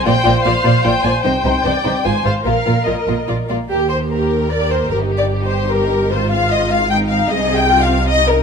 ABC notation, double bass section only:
X:1
M:3/4
L:1/8
Q:1/4=150
K:Eb
V:1 name="Double bass section" clef=bass
B,,, B,,, B,,, B,,, B,,, B,,, | C,, C,, C,, C,, A,,, A,,, | B,,, B,,, B,,, B,,, B,,, B,,, | E,,6 |
G,,,6 | A,,,6 | C,,6 |]